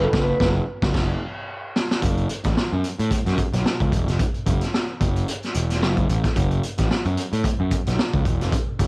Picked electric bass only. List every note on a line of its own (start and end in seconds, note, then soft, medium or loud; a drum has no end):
0.14 0.32 F#1 loud
0.40 0.59 F#1 loud
0.83 0.93 F#1 loud
0.95 1.13 F#1 loud
2.02 2.26 F#1 loud
2.45 2.55 A1 medium
2.57 muted picked electric bass stroke soft
2.72 2.82 F#2 medium
2.99 3.10 A2 medium
3.26 3.36 F#2 medium
3.54 3.64 B1 medium
3.81 3.91 C#2 medium
3.93 4.06 E1 medium
4.08 4.18 F1 medium
4.47 4.60 F#1 medium
5.01 5.24 F#1 medium
5.55 5.82 E1 medium
5.82 6.06 F#1 medium
6.10 6.22 A1 medium
6.36 6.60 F#1 loud
6.79 6.89 A1 medium
6.91 muted picked electric bass stroke soft
7.05 7.16 F#2 medium
7.33 7.43 A2 medium
7.60 7.70 F#2 medium
7.87 7.97 B1 medium
8.14 8.24 C#2 medium
8.26 8.41 E1 medium
8.41 8.51 F1 medium
8.80 8.87 F#1 medium